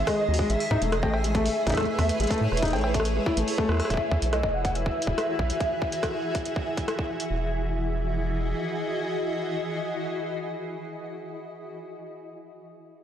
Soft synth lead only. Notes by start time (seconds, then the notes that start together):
0.07 D#5
0.50 E5
0.92 D#5
1.14 E5
3.90 E5
4.33 D#5
4.54 F#5
4.75 E5